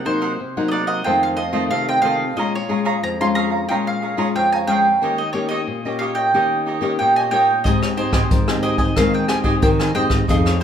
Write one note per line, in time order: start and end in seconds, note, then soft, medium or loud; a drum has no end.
0.00 0.36 C3 soft
0.05 0.37 F#3 medium
0.05 0.37 A#3 medium
0.05 0.20 D#4 soft
0.05 0.37 D#4 medium
0.05 0.21 A#4 soft
0.05 0.64 C5 medium
0.05 0.21 C5 soft
0.05 0.21 F#5 soft
0.21 0.31 D#4 medium
0.21 0.31 A#4 medium
0.21 0.31 C5 medium
0.21 0.32 F#5 medium
0.40 1.02 C3 soft
0.57 1.01 F#3 medium
0.57 1.01 A#3 soft
0.57 1.01 D#4 medium
0.57 0.71 A#4 soft
0.57 0.71 C5 soft
0.57 0.72 F#5 soft
0.68 0.87 D#4 medium
0.68 0.88 A#4 medium
0.68 0.87 D5 medium
0.68 0.71 D#5 medium
0.73 0.87 C5 medium
0.73 0.86 F#5 medium
0.87 1.04 A#4 soft
0.87 1.04 C5 soft
0.87 1.05 D#5 medium
0.87 1.03 F#5 soft
1.04 1.69 F2 medium
1.04 1.37 D#3 soft
1.04 1.37 A3 soft
1.04 1.37 C4 medium
1.04 1.35 F4 medium
1.04 1.36 A4 medium
1.04 1.37 C5 medium
1.04 1.37 D#5 medium
1.04 1.20 G5 medium
1.23 1.28 F5 medium
1.37 1.51 F4 soft
1.37 1.52 A4 soft
1.37 1.52 C5 medium
1.37 1.68 D#5 medium
1.37 1.53 D#5 soft
1.52 1.98 D#3 soft
1.52 1.98 A3 medium
1.52 1.98 C4 medium
1.52 1.63 F4 medium
1.52 1.63 A4 medium
1.52 1.63 C5 medium
1.52 1.63 D#5 medium
1.70 2.34 C3 medium
1.70 1.86 F4 medium
1.70 1.87 A4 soft
1.70 1.87 C5 medium
1.70 1.87 D#5 medium
1.70 1.88 F5 medium
1.88 2.03 A4 soft
1.88 2.03 C5 soft
1.88 2.03 D#5 soft
1.88 2.01 G5 medium
2.02 2.23 D#3 medium
2.02 2.23 A3 soft
2.02 2.23 C4 medium
2.02 2.36 F4 medium
2.02 2.36 A4 medium
2.02 2.36 C5 medium
2.02 2.36 D#5 medium
2.02 2.37 F5 loud
2.36 3.00 A#2 soft
2.36 2.57 G#3 soft
2.36 2.57 C#4 soft
2.36 2.57 F4 medium
2.36 2.68 G#4 medium
2.36 2.69 C#5 medium
2.36 2.54 D#5 medium
2.36 2.69 F5 medium
2.36 2.69 A#5 medium
2.55 2.85 C#5 medium
2.69 3.14 G#3 medium
2.69 3.14 C#4 soft
2.69 3.14 F4 medium
2.69 2.84 G#4 soft
2.69 2.84 C#5 soft
2.69 2.85 F5 soft
2.69 2.85 A#5 soft
2.85 2.95 G#4 medium
2.85 2.95 C#5 medium
2.85 2.95 F5 medium
2.85 2.96 A#5 medium
3.03 3.66 F2 medium
3.03 3.08 A#5 loud
3.20 3.65 G#3 medium
3.20 3.65 C#4 medium
3.20 3.65 F4 medium
3.20 3.34 C#5 soft
3.20 3.35 F5 soft
3.20 3.35 A#5 soft
3.20 3.26 C6 medium
3.35 3.51 G#4 medium
3.35 3.51 C#5 medium
3.35 3.50 F5 medium
3.35 3.67 A#5 medium
3.35 3.49 A#5 medium
3.50 3.68 C#5 soft
3.50 3.67 F5 soft
3.50 3.67 A#5 soft
3.69 4.32 A#2 medium
3.69 4.14 G#3 medium
3.69 4.14 C#4 soft
3.69 4.14 F4 soft
3.69 4.01 G#4 medium
3.69 4.01 C#5 medium
3.69 4.02 F5 medium
3.69 3.74 G5 medium
3.69 4.02 A#5 medium
3.87 4.17 F5 medium
4.02 4.16 G#4 soft
4.02 4.17 C#5 soft
4.02 4.17 F5 soft
4.02 4.17 A#5 medium
4.17 4.62 G#3 medium
4.17 4.62 C#4 medium
4.17 4.63 F4 medium
4.17 4.27 G#4 medium
4.17 4.28 C#5 medium
4.17 4.28 F5 medium
4.17 4.28 A#5 medium
4.35 4.98 F2 medium
4.35 4.51 G#4 medium
4.35 4.51 C#5 soft
4.35 4.51 F5 medium
4.35 4.51 G5 medium
4.35 4.52 A#5 medium
4.52 4.68 C#5 soft
4.52 4.68 F5 soft
4.52 4.57 G#5 medium
4.52 4.68 A#5 soft
4.67 4.87 G#3 soft
4.67 4.88 C#4 medium
4.67 4.88 F4 medium
4.67 5.00 G#4 medium
4.67 5.00 C#5 medium
4.67 5.01 F5 medium
4.67 5.14 G5 loud
4.67 5.01 A#5 medium
5.01 5.64 D#3 soft
5.01 5.21 A#3 medium
5.01 5.21 C#4 soft
5.01 5.33 D#4 medium
5.01 5.21 G4 medium
5.01 5.33 G4 medium
5.01 5.34 C#5 medium
5.01 5.35 D#5 medium
5.18 5.32 D#5 medium
5.33 5.78 A#3 medium
5.33 5.79 C#4 medium
5.33 5.49 D#4 soft
5.33 5.49 G4 soft
5.33 5.79 G4 medium
5.33 5.48 C#5 medium
5.33 5.50 C#5 soft
5.33 5.50 D#5 soft
5.49 5.60 D#4 medium
5.49 5.60 G4 medium
5.49 5.60 C#5 medium
5.49 5.96 D#5 medium
5.49 5.60 D#5 medium
5.67 6.30 A#2 medium
5.85 6.29 A#3 soft
5.85 6.29 C#4 medium
5.85 6.29 G4 medium
5.85 6.00 G4 soft
5.85 6.01 C#5 soft
5.85 6.00 D#5 soft
5.99 6.15 D#4 medium
5.99 6.16 G4 medium
5.99 6.15 C#5 medium
5.99 6.14 D#5 medium
5.99 6.04 F5 medium
6.15 6.32 G4 soft
6.15 6.32 C#5 soft
6.15 6.31 D#5 medium
6.15 6.98 G5 medium
6.34 6.96 D#3 medium
6.34 6.78 A#3 soft
6.34 6.78 C#4 medium
6.34 6.65 D#4 medium
6.34 6.78 G4 medium
6.34 6.66 G4 medium
6.34 6.66 C#5 medium
6.34 6.66 D#5 medium
6.66 6.81 D#4 soft
6.66 6.81 G4 soft
6.66 6.81 C#5 soft
6.66 6.82 D#5 medium
6.81 7.26 A#3 medium
6.81 7.26 C#4 medium
6.81 6.91 D#4 medium
6.81 7.26 G4 medium
6.81 6.92 G4 medium
6.81 6.92 C#5 medium
6.81 6.92 D#5 medium
6.99 7.63 A#2 medium
6.99 7.15 D#4 soft
6.99 7.15 G4 soft
6.99 7.15 C#5 soft
6.99 7.16 D#5 soft
6.99 7.14 G5 medium
7.16 7.31 G4 soft
7.16 7.31 C#5 soft
7.16 7.32 D#5 soft
7.16 7.21 G#5 medium
7.31 7.51 A#3 medium
7.31 7.51 C#4 medium
7.31 7.64 D#4 medium
7.31 7.64 G4 medium
7.31 7.52 G4 medium
7.31 7.64 C#5 medium
7.31 7.64 D#5 medium
7.31 7.66 G5 medium
7.64 8.21 G#2 medium
7.64 8.28 G#3 soft
7.64 7.93 C4 soft
7.64 7.93 D#4 soft
7.64 7.93 G4 soft
7.64 7.97 C5 medium
7.64 7.80 D#5 medium
7.64 7.97 D#5 medium
7.64 7.98 G#5 medium
7.64 kick medium
7.64 closed hi-hat medium
7.82 7.87 C#5 medium
7.82 cross-stick medium
7.82 closed hi-hat soft
7.97 8.42 C4 soft
7.97 8.42 D#4 medium
7.97 8.11 G4 soft
7.97 8.42 G4 medium
7.97 8.60 C5 medium
7.97 8.12 C5 soft
7.97 8.12 D#5 soft
7.97 8.12 G#5 medium
7.97 closed hi-hat soft
8.12 8.23 G4 medium
8.12 8.23 C5 medium
8.12 8.23 D#5 medium
8.12 8.23 G#5 medium
8.12 kick medium
8.12 cross-stick medium
8.31 8.87 G#2 medium
8.31 8.94 D#3 soft
8.31 kick medium
8.31 closed hi-hat medium
8.48 8.92 C4 medium
8.48 8.93 D#4 medium
8.48 8.93 G4 medium
8.48 8.62 C5 soft
8.48 8.63 D#5 soft
8.48 8.63 G#5 soft
8.48 cross-stick medium
8.48 closed hi-hat soft
8.62 8.79 G4 medium
8.62 8.79 C5 medium
8.62 8.78 D#5 medium
8.62 8.77 G#5 medium
8.62 closed hi-hat soft
8.78 8.95 C5 soft
8.78 8.95 D#5 medium
8.78 8.95 D#5 soft
8.78 8.95 G#5 soft
8.78 kick medium
8.78 closed hi-hat soft
8.96 9.25 D#3 medium
8.96 9.60 G#3 medium
8.96 9.42 C4 medium
8.96 9.42 D#4 soft
8.96 9.28 C5 medium
8.96 9.28 D#5 medium
8.96 9.14 F5 medium
8.96 9.29 G#5 medium
8.96 kick medium
8.96 cross-stick medium
8.96 closed hi-hat medium
9.13 9.28 G5 medium
9.13 closed hi-hat soft
9.28 9.42 G4 soft
9.28 9.43 C5 soft
9.28 9.43 D#5 soft
9.28 9.38 G#5 medium
9.28 9.44 G#5 soft
9.28 cross-stick medium
9.28 closed hi-hat soft
9.44 9.90 C4 medium
9.44 9.90 D#4 medium
9.44 9.54 G4 medium
9.44 9.91 G4 medium
9.44 9.54 C5 medium
9.44 9.54 D#5 medium
9.44 9.55 G#5 medium
9.44 kick medium
9.44 closed hi-hat soft
9.62 9.91 D#3 loud
9.62 10.26 D#3 medium
9.62 9.78 G4 soft
9.62 9.78 C5 medium
9.62 9.79 D#5 soft
9.62 9.68 G5 medium
9.62 9.78 G#5 medium
9.62 kick medium
9.62 closed hi-hat medium
9.80 9.94 C5 soft
9.80 9.94 D#5 soft
9.80 9.95 G#5 soft
9.80 9.94 G#5 medium
9.80 cross-stick medium
9.80 closed hi-hat soft
9.94 10.23 G#2 medium
9.94 10.23 C4 medium
9.94 10.23 D#4 medium
9.94 10.23 G4 medium
9.94 10.27 C5 medium
9.94 10.27 D#5 medium
9.94 10.04 G5 medium
9.94 closed hi-hat soft
10.10 kick medium
10.10 cross-stick medium
10.28 10.63 F2 medium
10.28 10.63 F3 soft
10.28 10.57 C4 medium
10.28 10.59 D#4 medium
10.28 10.57 D#4 soft
10.28 10.59 G#4 medium
10.28 10.57 G#4 medium
10.28 10.60 C5 medium
10.28 10.35 D#5 medium
10.28 10.60 F5 medium
10.28 kick medium
10.28 closed hi-hat medium
10.46 10.60 C#5 medium
10.46 cross-stick medium
10.46 closed hi-hat soft
10.60 10.63 D#4 soft